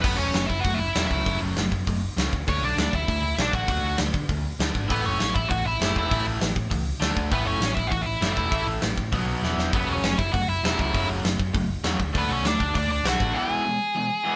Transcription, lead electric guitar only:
0.02 0.18 B3 medium
0.02 0.17 B4 loud
0.17 0.47 C#4 medium
0.17 0.50 C#5 medium
0.46 0.63 E4 medium
0.46 0.60 E5 loud
0.60 0.78 F#4 medium
0.60 0.74 F#5 loud
0.74 1.06 E5 loud
0.79 1.07 E4 medium
1.07 1.38 E4 medium
1.07 1.37 E5 medium
2.49 2.62 C#4 medium
2.49 2.63 C#5 loud
2.65 2.92 D4 medium
2.65 2.94 D5 medium
2.95 3.36 E4 medium
2.95 3.40 E5 loud
3.40 3.53 D4 medium
3.40 3.53 D5 medium
3.54 3.96 F#4 medium
3.54 3.96 F#5 medium
4.90 5.04 B3 medium
4.90 5.06 B4 loud
5.06 5.33 C#4 medium
5.06 5.34 C#5 medium
5.34 5.48 E4 medium
5.34 5.50 E5 medium
5.48 5.63 F#4 medium
5.48 5.64 F#5 loud
5.66 5.94 E4 medium
5.66 5.94 E5 medium
5.98 6.25 E4 medium
5.98 6.24 E5 medium
7.33 7.46 B3 medium
7.33 7.46 B4 loud
7.46 7.75 C#4 medium
7.46 7.77 C#5 medium
7.74 7.91 E5 medium
7.79 7.87 E4 medium
7.87 8.05 F#4 medium
7.87 8.05 F#5 loud
8.02 8.32 E5 loud
8.06 8.34 E4 medium
8.33 8.63 E5 medium
8.38 8.65 E4 medium
9.75 9.88 B3 medium
9.75 9.92 B4 medium
9.89 10.17 C#4 medium
9.89 10.20 C#5 medium
10.18 10.32 E4 medium
10.18 10.32 E5 loud
10.32 10.47 F#4 medium
10.32 10.48 F#5 loud
10.48 10.77 E4 medium
10.48 10.79 E5 medium
10.80 11.08 E4 medium
10.80 11.08 E5 medium
12.18 12.30 B3 medium
12.18 12.32 B4 medium
12.30 12.44 C#4 medium
12.30 12.48 C#5 medium
12.47 12.74 D4 medium
12.47 12.77 D5 medium
12.76 12.88 D4 medium
12.76 12.90 D5 medium
12.90 13.04 D4 medium
12.90 13.05 D5 medium
13.07 13.34 F#4 medium
13.07 13.38 F#5 medium
13.35 14.36 G#4 medium
13.35 14.36 G#5 loud

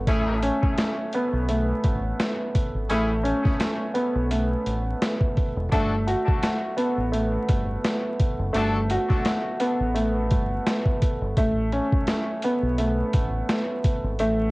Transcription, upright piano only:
0.08 1.47 A3 medium
0.43 1.84 C#4 medium
1.14 2.55 B3 medium
1.49 2.89 A3 medium
2.90 4.29 A3 medium
3.23 4.65 C#4 medium
3.94 5.36 B3 medium
4.31 5.72 A3 medium
5.73 7.11 A3 medium
6.07 7.48 F#4 medium
6.77 8.19 B3 medium
7.12 8.51 A3 medium
8.53 9.93 A3 medium
8.91 10.31 F#4 medium
9.60 11.01 B3 medium
9.94 11.36 A3 medium
11.38 12.76 A3 medium
11.72 13.13 C#4 medium
12.44 13.85 B3 medium
12.78 14.18 A3 medium
14.20 14.51 A3 medium

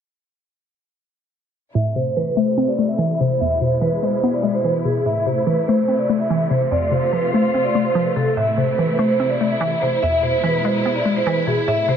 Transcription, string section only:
1.75 3.39 C3 medium
1.75 3.39 A3 medium
1.75 6.68 E4 medium
3.41 5.04 B2 medium
3.41 5.04 G#3 medium
5.06 8.34 C3 medium
5.06 6.70 A3 medium
6.71 9.99 A3 medium
6.71 8.35 F4 medium
8.37 10.01 C3 medium
8.37 11.97 E4 medium
10.03 11.66 B2 medium
10.03 11.66 G#3 medium
11.68 11.97 C3 medium
11.68 11.97 A3 medium

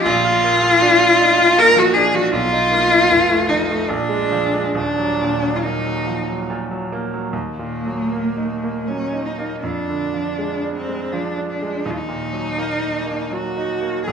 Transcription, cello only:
0.04 1.60 F4 loud
1.59 1.80 A#4 loud
1.79 1.95 F#4 loud
1.94 2.17 G#4 loud
2.15 2.33 F#4 loud
2.31 3.50 F4 loud
3.49 3.91 D#4 medium
3.90 4.75 D4 medium
4.77 5.57 D4 loud
5.56 5.64 F4 medium
5.62 6.48 D#4 medium
7.31 8.88 A#3 medium
8.87 9.27 C#4 medium
9.26 9.63 D#4 medium
9.63 10.72 D4 medium
10.76 11.13 C4 medium
11.12 11.48 D4 medium
11.50 11.87 D4 medium
11.85 11.92 D#4 medium
11.90 11.98 F4 medium
11.97 13.34 D#4 medium
13.33 14.05 F#4 medium
14.06 14.12 G#4 medium

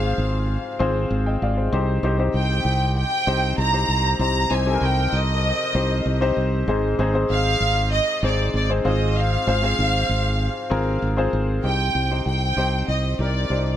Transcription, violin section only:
0.00 0.76 F5 loud
2.35 2.93 G5 medium
2.98 3.55 G5 loud
3.61 4.21 A#5 loud
4.22 4.50 A#5 loud
4.53 4.83 G#5 medium
4.85 5.14 G5 medium
5.15 6.38 D#5 loud
7.31 7.88 F5 loud
7.93 8.21 D#5 loud
8.25 8.55 D5 medium
8.57 8.70 D5 medium
8.87 9.15 D#5 medium
9.18 11.03 F5 loud
11.64 12.22 G5 medium
12.26 12.84 G5 medium
12.89 13.18 D#5 medium
13.20 13.77 D5 medium

